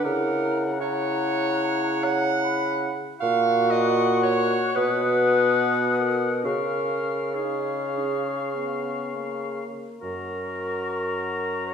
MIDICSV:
0, 0, Header, 1, 6, 480
1, 0, Start_track
1, 0, Tempo, 778210
1, 23, Time_signature, 4, 2, 24, 8
1, 503, Tempo, 816327
1, 1463, Tempo, 767263
1, 2903, Tempo, 818554
1, 3383, Tempo, 888889
1, 5783, Tempo, 855920
1, 6751, End_track
2, 0, Start_track
2, 0, Title_t, "Flute"
2, 0, Program_c, 0, 73
2, 23, Note_on_c, 0, 82, 82
2, 494, Note_off_c, 0, 82, 0
2, 508, Note_on_c, 0, 82, 91
2, 1456, Note_on_c, 0, 83, 85
2, 1464, Note_off_c, 0, 82, 0
2, 1773, Note_off_c, 0, 83, 0
2, 1936, Note_on_c, 0, 85, 102
2, 2910, Note_on_c, 0, 87, 90
2, 2919, Note_off_c, 0, 85, 0
2, 3859, Note_on_c, 0, 85, 64
2, 3867, Note_off_c, 0, 87, 0
2, 4335, Note_off_c, 0, 85, 0
2, 4338, Note_on_c, 0, 85, 60
2, 5578, Note_off_c, 0, 85, 0
2, 5779, Note_on_c, 0, 85, 60
2, 6751, Note_off_c, 0, 85, 0
2, 6751, End_track
3, 0, Start_track
3, 0, Title_t, "Oboe"
3, 0, Program_c, 1, 68
3, 27, Note_on_c, 1, 78, 71
3, 495, Note_off_c, 1, 78, 0
3, 500, Note_on_c, 1, 78, 82
3, 1750, Note_off_c, 1, 78, 0
3, 1930, Note_on_c, 1, 78, 97
3, 2875, Note_off_c, 1, 78, 0
3, 2906, Note_on_c, 1, 78, 97
3, 3833, Note_off_c, 1, 78, 0
3, 3860, Note_on_c, 1, 77, 61
3, 4336, Note_off_c, 1, 77, 0
3, 4346, Note_on_c, 1, 77, 57
3, 5582, Note_off_c, 1, 77, 0
3, 5786, Note_on_c, 1, 82, 54
3, 6751, Note_off_c, 1, 82, 0
3, 6751, End_track
4, 0, Start_track
4, 0, Title_t, "Clarinet"
4, 0, Program_c, 2, 71
4, 25, Note_on_c, 2, 70, 111
4, 396, Note_off_c, 2, 70, 0
4, 501, Note_on_c, 2, 73, 127
4, 1226, Note_on_c, 2, 78, 127
4, 1235, Note_off_c, 2, 73, 0
4, 1775, Note_off_c, 2, 78, 0
4, 1934, Note_on_c, 2, 77, 127
4, 2252, Note_on_c, 2, 75, 125
4, 2262, Note_off_c, 2, 77, 0
4, 2575, Note_off_c, 2, 75, 0
4, 2579, Note_on_c, 2, 73, 118
4, 2907, Note_on_c, 2, 71, 115
4, 2916, Note_off_c, 2, 73, 0
4, 3616, Note_on_c, 2, 70, 89
4, 3624, Note_off_c, 2, 71, 0
4, 3845, Note_off_c, 2, 70, 0
4, 3849, Note_on_c, 2, 70, 94
4, 4343, Note_on_c, 2, 68, 73
4, 4351, Note_off_c, 2, 70, 0
4, 5308, Note_off_c, 2, 68, 0
4, 5782, Note_on_c, 2, 70, 80
4, 6751, Note_off_c, 2, 70, 0
4, 6751, End_track
5, 0, Start_track
5, 0, Title_t, "French horn"
5, 0, Program_c, 3, 60
5, 29, Note_on_c, 3, 64, 78
5, 490, Note_off_c, 3, 64, 0
5, 494, Note_on_c, 3, 64, 80
5, 1747, Note_off_c, 3, 64, 0
5, 1938, Note_on_c, 3, 66, 93
5, 2879, Note_off_c, 3, 66, 0
5, 2908, Note_on_c, 3, 66, 92
5, 3854, Note_on_c, 3, 61, 68
5, 3862, Note_off_c, 3, 66, 0
5, 4339, Note_off_c, 3, 61, 0
5, 4342, Note_on_c, 3, 63, 76
5, 4683, Note_on_c, 3, 61, 59
5, 4691, Note_off_c, 3, 63, 0
5, 4993, Note_on_c, 3, 59, 60
5, 5001, Note_off_c, 3, 61, 0
5, 5309, Note_on_c, 3, 58, 54
5, 5317, Note_off_c, 3, 59, 0
5, 5780, Note_off_c, 3, 58, 0
5, 5783, Note_on_c, 3, 66, 54
5, 6751, Note_off_c, 3, 66, 0
5, 6751, End_track
6, 0, Start_track
6, 0, Title_t, "Bassoon"
6, 0, Program_c, 4, 70
6, 33, Note_on_c, 4, 49, 84
6, 1757, Note_off_c, 4, 49, 0
6, 1948, Note_on_c, 4, 46, 100
6, 2884, Note_off_c, 4, 46, 0
6, 2915, Note_on_c, 4, 47, 96
6, 3838, Note_off_c, 4, 47, 0
6, 3859, Note_on_c, 4, 49, 73
6, 5584, Note_off_c, 4, 49, 0
6, 5794, Note_on_c, 4, 42, 55
6, 6751, Note_off_c, 4, 42, 0
6, 6751, End_track
0, 0, End_of_file